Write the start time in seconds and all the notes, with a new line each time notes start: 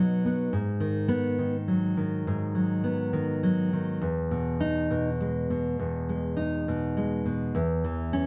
Already playing: B2 F#3 B3 D#4
0.25 B3
0.53 G#2
0.80 D#3
1.08 B3
1.39 D#3
1.68 F#3
1.97 D#3
2.27 G#2
2.55 F#3
2.84 B3
3.13 D#3
3.43 F#3
3.73 D#3
4.01 E2
4.31 B2
4.60 D#4
4.90 B2
5.21 G#3
5.50 B2
5.79 E2
6.09 G#3
6.37 D#4
6.68 B2
6.97 G#3
7.26 B2
7.55 E2
7.84 E3
8.13 C#4